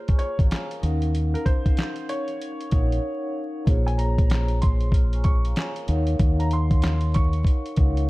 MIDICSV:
0, 0, Header, 1, 5, 480
1, 0, Start_track
1, 0, Key_signature, -5, "minor"
1, 0, Tempo, 631579
1, 869, Time_signature, 4, 2, 24, 8
1, 6155, End_track
2, 0, Start_track
2, 0, Title_t, "Upright piano"
2, 0, Program_c, 0, 0
2, 141, Note_on_c, 0, 73, 73
2, 278, Note_off_c, 0, 73, 0
2, 1018, Note_on_c, 0, 70, 79
2, 1100, Note_off_c, 0, 70, 0
2, 1106, Note_on_c, 0, 72, 90
2, 1559, Note_off_c, 0, 72, 0
2, 1590, Note_on_c, 0, 73, 85
2, 2759, Note_off_c, 0, 73, 0
2, 2937, Note_on_c, 0, 80, 76
2, 3019, Note_off_c, 0, 80, 0
2, 3024, Note_on_c, 0, 82, 81
2, 3478, Note_off_c, 0, 82, 0
2, 3509, Note_on_c, 0, 84, 75
2, 3725, Note_off_c, 0, 84, 0
2, 3983, Note_on_c, 0, 85, 79
2, 4120, Note_off_c, 0, 85, 0
2, 4861, Note_on_c, 0, 82, 80
2, 4942, Note_off_c, 0, 82, 0
2, 4964, Note_on_c, 0, 84, 90
2, 5408, Note_off_c, 0, 84, 0
2, 5431, Note_on_c, 0, 85, 79
2, 6155, Note_off_c, 0, 85, 0
2, 6155, End_track
3, 0, Start_track
3, 0, Title_t, "Vibraphone"
3, 0, Program_c, 1, 11
3, 0, Control_c, 1, 64, 127
3, 0, Note_on_c, 1, 58, 90
3, 0, Note_on_c, 1, 65, 76
3, 0, Note_on_c, 1, 68, 80
3, 0, Note_on_c, 1, 72, 78
3, 0, Note_on_c, 1, 73, 96
3, 0, Note_on_c, 1, 82, 57
3, 0, Note_on_c, 1, 89, 68
3, 65, Note_on_c, 1, 85, 72
3, 68, Note_on_c, 1, 80, 56
3, 290, Note_off_c, 1, 85, 0
3, 291, Note_off_c, 1, 80, 0
3, 307, Note_off_c, 1, 82, 0
3, 307, Note_on_c, 1, 82, 76
3, 312, Note_on_c, 1, 77, 60
3, 389, Note_off_c, 1, 82, 0
3, 389, Note_on_c, 1, 80, 75
3, 392, Note_off_c, 1, 77, 0
3, 393, Note_off_c, 1, 73, 0
3, 393, Note_on_c, 1, 73, 55
3, 530, Note_off_c, 1, 80, 0
3, 532, Note_off_c, 1, 73, 0
3, 540, Note_on_c, 1, 77, 62
3, 543, Note_on_c, 1, 70, 56
3, 612, Note_off_c, 1, 70, 0
3, 614, Note_on_c, 1, 63, 86
3, 621, Note_on_c, 1, 70, 89
3, 628, Note_off_c, 1, 77, 0
3, 629, Note_on_c, 1, 61, 93
3, 637, Note_on_c, 1, 77, 86
3, 641, Note_off_c, 1, 89, 0
3, 641, Control_c, 1, 64, 0
3, 643, Note_off_c, 1, 58, 0
3, 643, Note_off_c, 1, 68, 0
3, 644, Note_on_c, 1, 78, 99
3, 647, Note_off_c, 1, 65, 0
3, 647, Note_off_c, 1, 72, 0
3, 766, Control_c, 1, 64, 127
3, 1533, Note_off_c, 1, 63, 0
3, 1537, Note_off_c, 1, 70, 0
3, 1541, Note_off_c, 1, 61, 0
3, 1545, Note_off_c, 1, 77, 0
3, 1549, Note_off_c, 1, 78, 0
3, 2053, Note_on_c, 1, 63, 87
3, 2061, Note_on_c, 1, 70, 75
3, 2068, Note_on_c, 1, 73, 80
3, 2076, Note_on_c, 1, 77, 79
3, 2084, Note_on_c, 1, 78, 97
3, 2745, Note_off_c, 1, 63, 0
3, 2749, Note_off_c, 1, 70, 0
3, 2752, Note_off_c, 1, 73, 0
3, 2756, Note_off_c, 1, 77, 0
3, 2761, Note_off_c, 1, 78, 0
3, 2772, Note_on_c, 1, 58, 90
3, 2780, Note_on_c, 1, 65, 80
3, 2787, Note_on_c, 1, 68, 80
3, 2795, Note_on_c, 1, 72, 76
3, 2799, Control_c, 1, 64, 0
3, 2802, Note_on_c, 1, 73, 98
3, 2952, Control_c, 1, 64, 127
3, 3693, Note_off_c, 1, 58, 0
3, 3696, Note_off_c, 1, 65, 0
3, 3700, Note_off_c, 1, 68, 0
3, 3704, Note_off_c, 1, 72, 0
3, 3708, Note_off_c, 1, 73, 0
3, 3747, Note_on_c, 1, 89, 68
3, 3751, Note_on_c, 1, 82, 57
3, 3889, Note_off_c, 1, 89, 0
3, 3892, Note_off_c, 1, 82, 0
3, 3905, Note_on_c, 1, 85, 71
3, 3910, Note_on_c, 1, 80, 58
3, 4130, Note_off_c, 1, 85, 0
3, 4132, Note_off_c, 1, 80, 0
3, 4148, Note_on_c, 1, 82, 77
3, 4152, Note_on_c, 1, 77, 64
3, 4230, Note_off_c, 1, 82, 0
3, 4232, Note_off_c, 1, 77, 0
3, 4232, Note_on_c, 1, 80, 76
3, 4237, Note_on_c, 1, 73, 58
3, 4372, Note_off_c, 1, 80, 0
3, 4375, Note_off_c, 1, 73, 0
3, 4382, Note_on_c, 1, 77, 64
3, 4387, Note_on_c, 1, 70, 58
3, 4457, Note_off_c, 1, 70, 0
3, 4459, Note_on_c, 1, 63, 92
3, 4466, Note_on_c, 1, 70, 87
3, 4472, Note_off_c, 1, 77, 0
3, 4474, Note_on_c, 1, 73, 94
3, 4479, Control_c, 1, 64, 0
3, 4481, Note_on_c, 1, 77, 87
3, 4489, Note_on_c, 1, 78, 102
3, 4609, Control_c, 1, 64, 127
3, 5376, Note_off_c, 1, 63, 0
3, 5380, Note_off_c, 1, 70, 0
3, 5384, Note_off_c, 1, 73, 0
3, 5387, Note_off_c, 1, 77, 0
3, 5391, Note_off_c, 1, 78, 0
3, 5893, Note_on_c, 1, 63, 89
3, 5901, Note_on_c, 1, 70, 77
3, 5908, Note_on_c, 1, 73, 80
3, 5915, Note_on_c, 1, 77, 85
3, 5923, Note_on_c, 1, 78, 105
3, 6155, Note_off_c, 1, 63, 0
3, 6155, Note_off_c, 1, 70, 0
3, 6155, Note_off_c, 1, 73, 0
3, 6155, Note_off_c, 1, 77, 0
3, 6155, Note_off_c, 1, 78, 0
3, 6155, End_track
4, 0, Start_track
4, 0, Title_t, "Fingered electric bass"
4, 0, Program_c, 2, 33
4, 297, Note_on_c, 2, 32, 98
4, 371, Note_off_c, 2, 32, 0
4, 631, Note_on_c, 2, 39, 98
4, 1020, Note_off_c, 2, 39, 0
4, 2070, Note_on_c, 2, 34, 85
4, 2265, Note_off_c, 2, 34, 0
4, 2792, Note_on_c, 2, 34, 111
4, 4200, Note_off_c, 2, 34, 0
4, 4473, Note_on_c, 2, 39, 100
4, 4666, Note_off_c, 2, 39, 0
4, 4710, Note_on_c, 2, 39, 110
4, 5639, Note_off_c, 2, 39, 0
4, 5911, Note_on_c, 2, 37, 97
4, 6155, Note_off_c, 2, 37, 0
4, 6155, End_track
5, 0, Start_track
5, 0, Title_t, "Drums"
5, 61, Note_on_c, 9, 42, 58
5, 66, Note_on_c, 9, 36, 89
5, 137, Note_off_c, 9, 42, 0
5, 142, Note_off_c, 9, 36, 0
5, 144, Note_on_c, 9, 42, 74
5, 220, Note_off_c, 9, 42, 0
5, 296, Note_on_c, 9, 36, 94
5, 301, Note_on_c, 9, 42, 58
5, 372, Note_off_c, 9, 36, 0
5, 377, Note_off_c, 9, 42, 0
5, 388, Note_on_c, 9, 42, 88
5, 395, Note_on_c, 9, 38, 124
5, 402, Note_on_c, 9, 39, 100
5, 464, Note_off_c, 9, 42, 0
5, 471, Note_off_c, 9, 38, 0
5, 478, Note_off_c, 9, 39, 0
5, 540, Note_on_c, 9, 42, 60
5, 616, Note_off_c, 9, 42, 0
5, 632, Note_on_c, 9, 42, 79
5, 708, Note_off_c, 9, 42, 0
5, 774, Note_on_c, 9, 42, 60
5, 850, Note_off_c, 9, 42, 0
5, 871, Note_on_c, 9, 42, 87
5, 947, Note_off_c, 9, 42, 0
5, 1027, Note_on_c, 9, 42, 59
5, 1103, Note_off_c, 9, 42, 0
5, 1109, Note_on_c, 9, 36, 97
5, 1110, Note_on_c, 9, 42, 80
5, 1185, Note_off_c, 9, 36, 0
5, 1186, Note_off_c, 9, 42, 0
5, 1260, Note_on_c, 9, 36, 94
5, 1261, Note_on_c, 9, 42, 58
5, 1336, Note_off_c, 9, 36, 0
5, 1337, Note_off_c, 9, 42, 0
5, 1346, Note_on_c, 9, 42, 88
5, 1357, Note_on_c, 9, 38, 116
5, 1364, Note_on_c, 9, 39, 95
5, 1422, Note_off_c, 9, 42, 0
5, 1433, Note_off_c, 9, 38, 0
5, 1440, Note_off_c, 9, 39, 0
5, 1488, Note_on_c, 9, 42, 52
5, 1564, Note_off_c, 9, 42, 0
5, 1590, Note_on_c, 9, 42, 91
5, 1666, Note_off_c, 9, 42, 0
5, 1731, Note_on_c, 9, 42, 46
5, 1807, Note_off_c, 9, 42, 0
5, 1836, Note_on_c, 9, 42, 82
5, 1912, Note_off_c, 9, 42, 0
5, 1981, Note_on_c, 9, 42, 57
5, 2057, Note_off_c, 9, 42, 0
5, 2063, Note_on_c, 9, 42, 75
5, 2069, Note_on_c, 9, 36, 88
5, 2139, Note_off_c, 9, 42, 0
5, 2145, Note_off_c, 9, 36, 0
5, 2222, Note_on_c, 9, 42, 55
5, 2298, Note_off_c, 9, 42, 0
5, 2790, Note_on_c, 9, 36, 116
5, 2791, Note_on_c, 9, 42, 87
5, 2866, Note_off_c, 9, 36, 0
5, 2867, Note_off_c, 9, 42, 0
5, 2947, Note_on_c, 9, 42, 61
5, 3023, Note_off_c, 9, 42, 0
5, 3031, Note_on_c, 9, 42, 83
5, 3107, Note_off_c, 9, 42, 0
5, 3180, Note_on_c, 9, 36, 100
5, 3182, Note_on_c, 9, 42, 57
5, 3256, Note_off_c, 9, 36, 0
5, 3258, Note_off_c, 9, 42, 0
5, 3267, Note_on_c, 9, 42, 94
5, 3278, Note_on_c, 9, 38, 122
5, 3285, Note_on_c, 9, 39, 97
5, 3343, Note_off_c, 9, 42, 0
5, 3354, Note_off_c, 9, 38, 0
5, 3361, Note_off_c, 9, 39, 0
5, 3408, Note_on_c, 9, 42, 51
5, 3484, Note_off_c, 9, 42, 0
5, 3510, Note_on_c, 9, 42, 94
5, 3521, Note_on_c, 9, 36, 97
5, 3586, Note_off_c, 9, 42, 0
5, 3597, Note_off_c, 9, 36, 0
5, 3652, Note_on_c, 9, 42, 48
5, 3728, Note_off_c, 9, 42, 0
5, 3738, Note_on_c, 9, 36, 90
5, 3755, Note_on_c, 9, 42, 88
5, 3814, Note_off_c, 9, 36, 0
5, 3831, Note_off_c, 9, 42, 0
5, 3898, Note_on_c, 9, 42, 57
5, 3974, Note_off_c, 9, 42, 0
5, 3982, Note_on_c, 9, 42, 74
5, 3989, Note_on_c, 9, 36, 91
5, 4058, Note_off_c, 9, 42, 0
5, 4065, Note_off_c, 9, 36, 0
5, 4140, Note_on_c, 9, 42, 58
5, 4216, Note_off_c, 9, 42, 0
5, 4226, Note_on_c, 9, 42, 94
5, 4233, Note_on_c, 9, 38, 127
5, 4240, Note_on_c, 9, 39, 103
5, 4302, Note_off_c, 9, 42, 0
5, 4309, Note_off_c, 9, 38, 0
5, 4316, Note_off_c, 9, 39, 0
5, 4377, Note_on_c, 9, 42, 63
5, 4453, Note_off_c, 9, 42, 0
5, 4468, Note_on_c, 9, 42, 82
5, 4544, Note_off_c, 9, 42, 0
5, 4611, Note_on_c, 9, 42, 63
5, 4687, Note_off_c, 9, 42, 0
5, 4708, Note_on_c, 9, 42, 90
5, 4709, Note_on_c, 9, 36, 117
5, 4784, Note_off_c, 9, 42, 0
5, 4785, Note_off_c, 9, 36, 0
5, 4863, Note_on_c, 9, 42, 63
5, 4939, Note_off_c, 9, 42, 0
5, 4947, Note_on_c, 9, 42, 82
5, 5023, Note_off_c, 9, 42, 0
5, 5098, Note_on_c, 9, 42, 60
5, 5099, Note_on_c, 9, 36, 99
5, 5174, Note_off_c, 9, 42, 0
5, 5175, Note_off_c, 9, 36, 0
5, 5184, Note_on_c, 9, 42, 90
5, 5195, Note_on_c, 9, 38, 118
5, 5202, Note_on_c, 9, 39, 98
5, 5260, Note_off_c, 9, 42, 0
5, 5271, Note_off_c, 9, 38, 0
5, 5278, Note_off_c, 9, 39, 0
5, 5325, Note_on_c, 9, 42, 52
5, 5401, Note_off_c, 9, 42, 0
5, 5429, Note_on_c, 9, 42, 92
5, 5440, Note_on_c, 9, 36, 97
5, 5505, Note_off_c, 9, 42, 0
5, 5516, Note_off_c, 9, 36, 0
5, 5571, Note_on_c, 9, 42, 47
5, 5647, Note_off_c, 9, 42, 0
5, 5658, Note_on_c, 9, 36, 88
5, 5675, Note_on_c, 9, 42, 87
5, 5734, Note_off_c, 9, 36, 0
5, 5751, Note_off_c, 9, 42, 0
5, 5819, Note_on_c, 9, 42, 58
5, 5895, Note_off_c, 9, 42, 0
5, 5901, Note_on_c, 9, 42, 74
5, 5909, Note_on_c, 9, 36, 90
5, 5977, Note_off_c, 9, 42, 0
5, 5985, Note_off_c, 9, 36, 0
5, 6058, Note_on_c, 9, 42, 61
5, 6134, Note_off_c, 9, 42, 0
5, 6155, End_track
0, 0, End_of_file